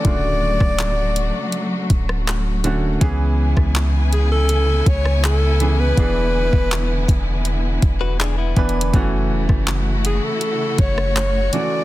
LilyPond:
<<
  \new Staff \with { instrumentName = "Alto saxophone" } { \time 4/4 \key fis \minor \tempo 4 = 81 d''2~ d''8 r4. | r4. gis'16 a'8. cis''8 a'8. b'16~ | b'4.~ b'16 r2 r16 | r4. gis'16 a'8. cis''8 cis''8 d''8 | }
  \new Staff \with { instrumentName = "Clean electric guitar" } { \time 4/4 \key fis \minor r1 | r1 | r2 r8. <fis' b'>16 <d' gis'>16 <b e'>8. | r1 | }
  \new Staff \with { instrumentName = "Grand piano" } { \time 4/4 \key fis \minor <cis d a eis' fis'>4. r2 <d a cis' fis'>8 | <e b cis' gis'>4. r2 <e b cis' gis'>8 | <e b d' gis'>4. r2 <e b d' b'>8 | <e a cis' fis'>4. r2 <e a cis' fis'>8 | }
  \new Staff \with { instrumentName = "String section" } { \time 4/4 \key fis \minor << { <a fis'>1 | <b e' gis''>1~ | <b e' gis''>1 | <a e' fis'>1 | } \\ { fis1 | cis1 | d1 | cis1 | } >> }
  \new Staff \with { instrumentName = "808-style bass" } { \clef bass \time 4/4 \key fis \minor d,,8. d,,4 r8. d,,4. | cis,8. cis,4.~ cis,16 cis,4. | e,,8. e,,8. e,,4 e,,4 e,,8 | fis,,8 e,,16 fis,,4 r8. fis,,4 r8 | }
  \new DrumStaff \with { instrumentName = "Drums" } \drummode { \time 4/4 <hh bd>8. <bd ss>16 <hc hh>8 hh8 hh8 <hh bd>16 ss16 hc8 hh8 | <hh bd>8. <bd ss>16 <hc hh>8 hh8 hh8 <hh bd>16 ss16 hc8 hh8 | <hh bd>8. bd16 <hc hh>8 <hh bd>8 hh8 <hh bd>8 \tuplet 3/2 { hc16 r16 r16 <hh bd>16 hh16 hh16 } | <hh bd>8. <bd ss>16 <hc hh>8 hh8 hh8 <hh bd>16 ss16 hc8 hh8 | }
>>